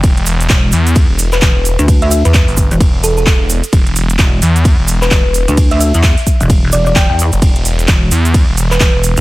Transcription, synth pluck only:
X:1
M:4/4
L:1/16
Q:"Swing 16ths" 1/4=130
K:Em
V:1 name="Synth pluck"
z8 z3 B4 z | z e e B z6 A A z4 | z8 z3 B4 z | z e e z6 z d d g g z2 |
z8 z3 B4 z |]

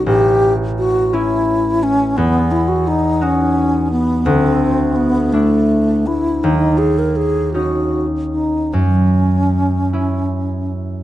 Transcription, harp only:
X:1
M:6/8
L:1/8
Q:3/8=55
K:Ador
V:1 name="Harp"
[A,,,^C]3 [CE]3 | [K:D#phr] E,,3 [DF]3 | =D,,3 [=DE]3 | D,,3 [CD]3 |
F,,3 [CE]3 |]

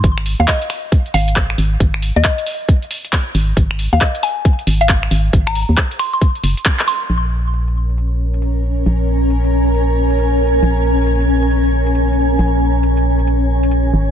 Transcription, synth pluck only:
X:1
M:4/4
L:1/16
Q:"Swing 16ths" 1/4=136
K:Bbm
V:1 name="Synth pluck"
c' z2 f e z4 z f z4 z | z3 e e6 z6 | z3 f e z a z4 f z4 | z b z4 c' c' z6 c'2 |
z16 | z16 | z16 | z16 |]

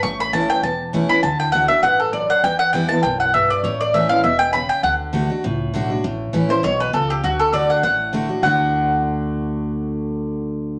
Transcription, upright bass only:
X:1
M:4/4
L:1/8
Q:"Swing" 1/4=200
K:D
V:1 name="Upright bass" clef=bass
A,,,4 E,,,4 | D,,4 A,,,4 | E,,4 B,,,4 | A,,,4 E,,,4 |
D,,4 C,,2 B,,,2 | A,,,2 A,,,2 B,,,2 C,,2 | D,,4 A,,,4 | D,,8- |
D,,8 |]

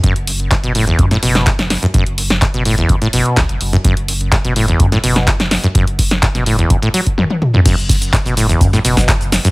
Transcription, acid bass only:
X:1
M:4/4
L:1/16
Q:1/4=126
K:F#m
V:1 name="Acid bass" clef=bass
F,, z3 G,, B,, A,, E,, F,, A,, B,,2 G,, z2 F,, | F,, z3 G,, B,, A,, E,, F,, A,, B,,2 G,, z2 F,, | F,, z3 G,, B,, A,, E,, F,, A,, B,,2 G,, z2 F,, | F,, z3 G,, B,, A,, E,, F,, A,, F, z F,, z2 F,, |
F,, z3 G,, B,, A,, E,, F,, A,, B,,2 G,, z2 F,, |]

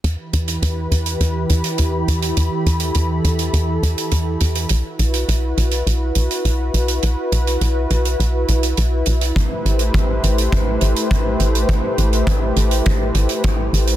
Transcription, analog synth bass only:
X:1
M:4/4
L:1/8
Q:1/4=103
K:Em
V:1 name="Analog synth bass" clef=bass
E,, E,, E,, E,, E,, E,, E,, E,, | E,, E,, E,, E,, E,, E,, E,, E,, | B,,, B,,, B,,, B,,, B,,, B,,, B,,, B,,, | B,,, B,,, B,,, B,,, B,,, B,,, B,,, B,,, |
A,,, A,,, A,,, A,,, A,,, A,,, A,,, A,,, | A,,, A,,, A,,, A,,, A,,, A,,, A,,, A,,, |]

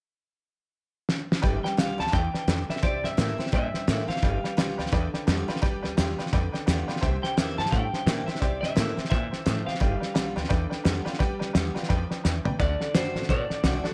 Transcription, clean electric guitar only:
X:1
M:4/4
L:1/8
Q:"Swing" 1/4=172
K:Gmix
V:1 name="Clean electric guitar"
z8 | z g f a g3 e | d e3 e3 f- | f6- f z |
z8 | z g e a g3 e | d e3 e3 f- | f6- f z |
z8 | d2 c2 d4 |]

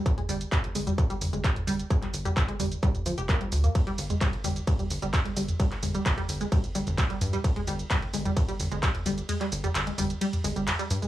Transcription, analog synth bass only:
X:1
M:4/4
L:1/16
Q:1/4=130
K:Gphr
V:1 name="Analog synth bass" clef=bass
z2 G,,, z F,,, z G,,, z3 G,,, G,,, z2 G,,, z | z2 G,,, z G,,, z G,,, z3 G,,, F,,, z2 D,, z | z2 G,,, z F,,, z G,,, z3 G,,, G,,, z2 G,,, z | z2 G,,, z G,,, z G,,, z3 G,,, G,,, z2 G,, z |
z2 G,,, z F,,, z G,,, z3 G,,, G,,, z2 G,,, z | z2 G,,, z G,,, z G,,, z3 G,,, G,,, z2 G,, z |]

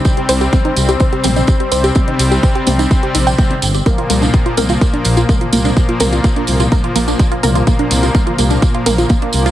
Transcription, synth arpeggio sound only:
X:1
M:4/4
L:1/16
Q:1/4=126
K:Bbmix
V:1 name="Synth arpeggio sound"
z G c G C E z G c G C E z G c G | C E z G c G C E z G E g g C z G | B F B, D z F B F B, D z F B F B, D | z F B F B, D z F B F B, D z F B F |
B, D z F B F B, D z F B F B, D z F |]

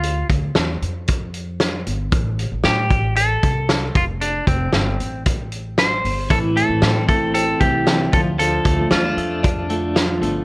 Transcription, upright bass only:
X:1
M:4/4
L:1/16
Q:1/4=115
K:Ddor
V:1 name="Upright bass" clef=bass
D,,2 D,,2 E,,2 F,,8 G,,,2 | A,,,3 A,,, A,,2 A,,,4 C,,4 F,,,2- | F,,,2 F,,,2 G,,,2 A,,,8 G,,,2 | A,,,3 A,,, A,,2 A,,,4 C,,4 D,,2- |
D,,2 D,,2 E,,2 F,,8 G,,,2 |]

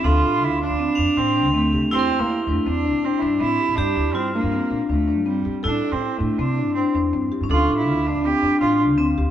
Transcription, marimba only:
X:1
M:5/4
L:1/8
Q:1/4=161
K:Dm
V:1 name="Marimba"
A F F D C D D D C G | G E E D C D D D C G | G E E D C D D D C G | A E E D C D D D C G |
A F F D C D D D C G |]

